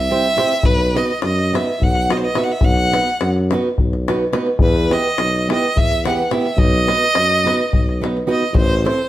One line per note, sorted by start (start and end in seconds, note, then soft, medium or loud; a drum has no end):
0.00 0.31 C2 medium
0.00 0.67 E5 loud
0.10 0.26 C4 medium
0.10 0.27 E4 soft
0.10 0.27 G4 medium
0.10 0.27 C5 medium
0.26 davul high soft
0.37 0.52 C4 medium
0.37 0.53 E4 medium
0.37 0.53 G4 medium
0.37 0.53 C5 medium
0.37 davul high medium
0.52 davul high soft
0.63 0.99 B1 medium
0.63 0.98 B4 loud
0.63 davul low medium
0.79 davul high soft
0.94 1.10 B3 medium
0.94 1.11 D#4 soft
0.94 1.11 F#4 medium
0.94 1.12 B4 medium
0.94 1.23 D#5 medium
0.94 davul high medium
1.22 1.58 F#2 medium
1.22 1.57 D#5 medium
1.22 davul high medium
1.39 davul high soft
1.53 1.69 B3 medium
1.53 1.70 D#4 soft
1.53 1.70 F#4 soft
1.53 1.70 B4 medium
1.53 1.84 E5 medium
1.53 davul high medium
1.80 2.29 B1 medium
1.80 2.13 F#5 medium
1.80 davul low medium
1.95 davul high soft
2.10 2.25 B3 medium
2.10 2.25 D#4 soft
2.10 2.26 F#4 medium
2.10 2.26 B4 medium
2.10 2.19 D#5 medium
2.10 davul high medium
2.17 2.26 C5 medium
2.24 2.39 D#5 medium
2.35 2.51 B3 medium
2.35 2.51 D#4 medium
2.35 2.51 F#4 medium
2.35 2.52 B4 medium
2.35 2.45 E5 medium
2.35 davul high medium
2.44 2.53 F#5 medium
2.44 davul high soft
2.51 2.66 E5 medium
2.61 2.98 B1 medium
2.61 3.30 F#5 loud
2.61 davul low medium
2.77 davul high soft
2.92 3.08 B3 medium
2.92 3.09 D#4 medium
2.92 3.09 F#4 medium
2.92 3.09 B4 medium
2.92 davul high medium
3.21 3.56 F#2 medium
3.21 davul high medium
3.36 davul high soft
3.51 3.67 B3 medium
3.51 3.68 D#4 medium
3.51 3.68 F#4 medium
3.51 3.69 B4 medium
3.51 davul high medium
3.78 4.28 B1 medium
3.78 davul low medium
3.93 davul high soft
4.08 4.23 B3 medium
4.08 4.23 D#4 medium
4.08 4.24 F#4 medium
4.08 4.24 B4 medium
4.08 davul high medium
4.33 4.48 B3 medium
4.33 4.49 D#4 medium
4.33 4.49 F#4 medium
4.33 4.49 B4 medium
4.33 davul high medium
4.47 davul high soft
4.59 4.95 E2 loud
4.59 4.94 B4 loud
4.59 davul low loud
4.76 davul high soft
4.90 5.06 B3 medium
4.90 5.06 E4 medium
4.90 5.07 G4 medium
4.90 5.07 B4 medium
4.90 5.50 D#5 medium
4.90 davul high medium
5.18 5.53 B1 medium
5.18 davul high medium
5.34 davul high soft
5.49 5.65 B3 medium
5.49 5.65 E4 medium
5.49 5.65 G4 medium
5.49 5.66 B4 medium
5.49 5.79 D#5 medium
5.49 davul high medium
5.76 6.24 E2 medium
5.76 6.06 E5 loud
5.76 davul low medium
5.91 davul high soft
6.05 6.21 B3 medium
6.05 6.21 E4 medium
6.05 6.21 G4 medium
6.05 6.22 B4 medium
6.05 6.33 F#5 medium
6.05 davul high medium
6.31 6.46 B3 medium
6.31 6.47 E4 medium
6.31 6.47 G4 soft
6.31 6.47 B4 medium
6.31 6.59 E5 medium
6.31 davul high medium
6.46 davul high soft
6.56 6.92 B1 loud
6.56 8.03 D#5 loud
6.56 davul low loud
6.74 davul high soft
6.87 7.03 B3 medium
6.87 7.04 D#4 medium
6.87 7.04 F#4 medium
6.87 7.04 B4 medium
6.87 davul high medium
7.02 davul high soft
7.15 7.50 F#2 medium
7.15 davul high medium
7.31 davul high soft
7.44 7.61 B3 medium
7.44 7.61 D#4 medium
7.44 7.62 F#4 medium
7.44 7.62 B4 medium
7.44 davul high medium
7.60 davul high soft
7.73 8.21 B1 medium
7.73 davul low medium
7.89 davul high soft
8.01 8.17 B3 medium
8.01 8.17 D#4 medium
8.01 8.18 F#4 medium
8.01 8.18 B4 medium
8.01 davul high medium
8.17 davul high soft
8.27 8.43 B3 medium
8.27 8.43 D#4 medium
8.27 8.43 F#4 medium
8.27 8.43 B4 medium
8.27 8.53 D#5 medium
8.42 davul high soft
8.53 8.88 A1 loud
8.53 8.85 C5 loud
8.53 davul low medium
8.84 9.00 C4 medium
8.84 9.01 E4 medium
8.84 9.01 A4 soft
8.84 9.01 C5 medium
8.84 9.09 C5 medium
8.84 davul high medium